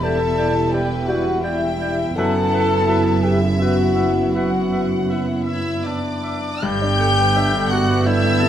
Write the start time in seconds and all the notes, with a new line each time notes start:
Already playing: E1 E2 G3 D4 E4 G4 B4
0.02 A4 D5 E5 G5 A5
0.38 D5 G5
0.70 G4 B4 D5 G5
1.06 F#4 D5 F#5 G5
1.42 E4 D5 E5 G5
1.81 D5 G5
2.16 F#1 F#2 B3 E4 A4 B4 E5 F#5 A5
2.52 B4 E5
2.87 F#3 B4 E5
3.23 G4 B4 E5 G5
3.42 E4 E5
3.59 B3 E4 F#4 B4 E5 F#5
3.96 B4 E5
4.35 F#4 B4 E5 F#5
4.72 B4 E5
5.09 B3 E4 B4 E5
5.46 E4 E5 E6
5.83 D4 D5 E5 D6
6.23 E5
6.61 G1 G2 A3 B3 G4 A4 G5 G6
6.82 D4
7.00 A4
7.18 B4
7.35 D4 E5
7.55 D3
7.69 F#4 A4 D5 F#5 F#6
7.90 B4
8.05 D4 E4 E5 G5 E6
8.24 D3
8.40 C3 A5